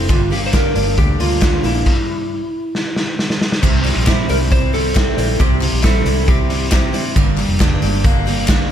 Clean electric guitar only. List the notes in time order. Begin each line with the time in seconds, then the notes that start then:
Already playing: A3 C4 F4
0.08 G2
0.31 A#3
0.53 G3
0.75 D4
0.97 D3
1.19 A#3
1.41 G3
1.63 A#3
3.62 C3
3.84 G3
4.06 E4
4.28 G3
4.51 C4
4.73 G3
4.95 C4
5.17 G3
5.39 C3
5.61 G3
5.83 E4
6.05 G3
6.27 C4
6.50 G3
6.72 C4
6.94 G3
7.16 G2
7.38 G3
7.60 D4
7.82 G3
8.04 A#3
8.26 G3
8.48 A#3